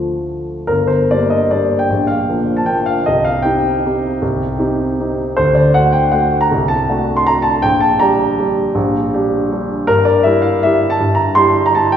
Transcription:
Already playing: D2 F3 A3 F4 D5
0.67 G1 A#4
0.87 C5
1.11 G3 A#3 D4 D5
1.30 D#5
1.51 G3 A#3 D4 D5
1.79 G5
1.90 A#1
2.07 F5
2.28 F3 A#3 D4
2.57 A5
2.66 F3 A#3 D4 G5
2.86 F5
3.06 C2 D#5
3.25 F5
3.42 C4 D#4 G4 G5
3.85 C4 D#4 G4
4.22 C2
4.59 C4 D#4 G4
5.00 C4 D#4 G4
5.37 D2 C5
5.55 D5
5.74 A3 D4 F#4 F#5
5.93 G5
6.12 A3 D4 F#4 F#5
6.41 A#5
6.51 C2
6.68 A5
6.89 A3 D4 F#4
7.17 C6
7.27 A3 D4 F#4 A#5
7.42 A5
7.62 A#1 G5
7.80 A5
8.00 G3 D4 G4 A#5
8.38 G3 D4 G4
8.75 A#1
9.13 G3 D4 G4
9.52 G3 D4 G4
9.87 G2 A#4
10.05 D5
10.23 G3 E4 G4 E5
10.42 F5
10.63 G3 E4 G4 E5
10.90 A5
11.00 G2
11.15 A#5
11.35 G3 E4 G4 C6
11.66 A#5
11.75 G3 E4 G4 A5
11.92 G5

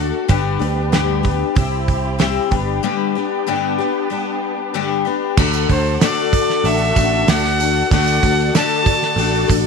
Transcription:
Already playing: D2 A3 D4 F#4 A4
0.00 D4 F#4
0.28 G1 G2 D3 G3 B3 D4 G4, kick, open hi-hat
0.59 D2 G3 B3 D4 G4, open hi-hat
0.92 G2 D3 G3 B3 D4 G4, snare, open hi-hat
1.23 G3 B3 D4 G4, kick, open hi-hat
1.55 C2 G3 C4 E4 G4, kick, open hi-hat
1.88 kick, open hi-hat
2.19 C3 G3 C4 E4 G4, snare, open hi-hat
2.50 G1 G3 B3 D4 G4, kick, open hi-hat
2.83 G2 D3 G3 B3 D4 G4
3.15 G3 B3 D4 G4
3.47 G2 D3 G3 B3 D4 G4
3.78 G3 B3 D4 G4
4.10 G3 B3 D4 G4
4.74 G2 D3 G3 B3 D4 G4
5.05 G3 B3 D4 G4
5.37 D2 D3 A3 D4 F#4 A4, kick, crash
5.54 tambourine
5.69 D2 D4 F#4 A4 C5, kick, open hi-hat
5.86 tambourine
6.01 D3 A3 D4 F#4 A4 D5, snare, open hi-hat, tambourine
6.33 kick, open hi-hat, tambourine
6.49 snare, tambourine
6.64 A1 A3 D4 F#4 A4 E5, open hi-hat, tambourine
6.96 A1 D4 F#4 A4, kick, open hi-hat, tambourine
7.27 D2 D3 A3 D4 F#4 A4 F#5, snare, open hi-hat, tambourine
7.45 snare
7.60 D4 F#4 A4, open hi-hat, tambourine
7.76 tambourine
7.91 D2 D3 A3 D4 F#4 A4 D5 F#5, kick, open hi-hat
8.07 tambourine
8.23 D2 D4 F#4 A4, kick, open hi-hat
8.39 tambourine
8.55 D3 A3 D4 F#4 A4 A5, snare, open hi-hat, tambourine
8.86 kick, open hi-hat, tambourine
9.02 snare, tambourine
9.16 A1 A3 D4 F#4 A4, open hi-hat, tambourine
9.48 A1 D4 F#4 A4, kick, open hi-hat, tambourine

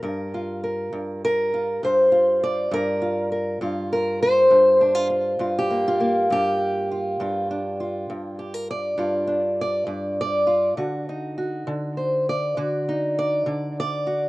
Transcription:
Already playing: F5
0.03 G2 A#4
0.34 F4
0.64 A#4
0.93 G2
1.25 A#4
1.54 F4
1.83 G2 C5
2.12 F4
2.44 D5
2.71 G2 A#4
3.02 F4
3.32 A#4
3.61 G2 F4
3.93 A#4
4.23 C5
4.51 G2
4.81 D4
4.95 F4
5.10 F4
5.39 G2 F4
5.59 G4
5.70 A#3
5.88 F4
6.00 A#3
6.30 G2 G4
6.92 F4
7.20 G2 F4
7.51 D4
7.80 F4
8.10 G2
8.39 G4
8.54 A#4
8.71 D5
8.98 G2 F4
9.27 D4
9.61 D5
9.87 G2
10.21 D5
10.47 F4
10.77 D3 F#4
11.09 D#4
11.38 F#4
11.67 D3
11.97 C5
12.29 D5
12.57 D3 F#4
12.89 D#4
13.19 D5
13.46 D3
13.80 D5
14.07 F#4

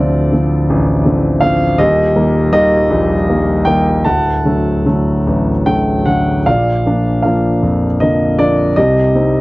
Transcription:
Already playing: D1 D2 D3 F3 C4 F4 D5
0.32 D3 F3 C4
0.70 A1
1.05 D3 F3 C4
1.40 D3 F3 C4 F5
1.78 D#1 D#2 G4 D#5
2.15 D#3 G3 A#3
2.52 D#3 G3 A#3 G4 D#5
2.90 A#1
3.28 D#3 G3 A#3
3.65 D#3 G3 A#3 G5
4.05 D1 D2 F#5 A5
4.46 D3 F#3 A3
4.86 D3 F#3 A3
5.27 A1
5.66 D3 F#3 A3 G5
6.06 D3 F#3 A3 F#5
6.46 A#1 A#2 D5 F5
6.86 F3 A#3 D4
7.22 F3 A#3 D4 F5
7.62 F2
8.00 D3 F3 A#3 D#5
8.38 F3 A#3 D4 D5
8.76 C2 C3 G4 D#5
9.15 G3 C4 D#4

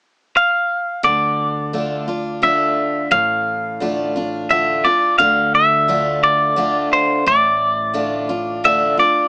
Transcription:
0.37 F5
1.03 D2 D3 D5
1.73 D3 A3 D4 F4
2.08 D4 F4
2.42 D3 A3 D4 F4 E5
3.11 A1 A2 F5
3.80 D3 A3 D4 F4
4.16 D4 F4
4.50 D3 A3 D4 F4 E5
4.85 D4 F4 D5
5.18 D2 D3 F5
5.55 E5
5.88 D3 A3 D4 F4
6.24 D5
6.56 D3 A3 D4 F4
6.93 C5
7.26 A1 A2 D5
7.94 D3 A3 D4 F4
8.29 D4 F4
8.64 D3 A3 D4 F4 E5
8.97 D4 F4 D5

